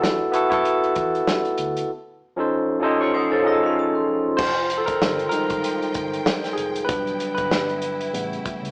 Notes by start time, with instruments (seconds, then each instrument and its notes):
Already playing: tine electric piano B3 E4 F#4 A4
0.02 fingered electric bass E2, snare
0.31 tine electric piano B3 E4 F#4, closed hi-hat
0.35 tine electric piano A4
0.49 fingered electric bass F#2, tine electric piano B3 E4 F#4 A4, kick, closed hi-hat
0.65 closed hi-hat
0.84 closed hi-hat
0.95 fingered electric bass E2, kick, closed hi-hat
1.15 closed hi-hat
1.27 snare
1.45 closed hi-hat
1.58 fingered electric bass D2, closed hi-hat
1.77 closed hi-hat
2.36 tine electric piano F3 C#4 D#4 A4 C5
2.80 tine electric piano F3 C#4 D#4 A4, clean electric guitar G4 D#5
2.84 tine electric piano C5
3.01 clean electric guitar F4 C#5
3.14 clean electric guitar D#4 C5, vibraphone C5
3.31 clean electric guitar C#4 A4, vibraphone C#5
3.43 tine electric piano F3 C#4 D#4 G#4 D#5
3.48 vibraphone D#5
3.52 tine electric piano A4
3.63 clean electric guitar A3 F4, vibraphone F5
3.79 vibraphone A5
3.95 vibraphone C6
4.37 fingered electric bass F1, string section D#3 F3 F4 G5, tine electric piano C5, kick, crash
4.70 closed hi-hat
4.78 tine electric piano A4
4.86 tine electric piano A#4, kick, closed hi-hat
5.02 fingered electric bass G1, snare
5.19 closed hi-hat
5.29 tine electric piano G3 G#3 D#4 A#4, closed hi-hat
5.50 fingered electric bass G#1, kick, closed hi-hat
5.64 closed hi-hat
5.82 closed hi-hat
5.94 fingered electric bass G1, kick, closed hi-hat
6.13 closed hi-hat
6.26 snare
6.44 snare, closed hi-hat
6.53 tine electric piano G#4
6.57 fingered electric bass F1, closed hi-hat
6.76 closed hi-hat
6.85 string section D3 B3 E4, tine electric piano F#3 G3 D4 B4
6.89 fingered electric bass E1, kick, closed hi-hat
7.07 closed hi-hat
7.20 closed hi-hat
7.34 tine electric piano B4, kick, closed hi-hat
7.39 fingered electric bass G1
7.51 snare
7.69 closed hi-hat
7.82 closed hi-hat
8.01 closed hi-hat
8.13 fingered electric bass A1, tine electric piano C#3 G3 B3, string section C#3 A3, closed hi-hat
8.33 closed hi-hat
8.45 muted fingered electric bass stroke, kick, closed hi-hat
8.62 fingered electric bass C#2, closed hi-hat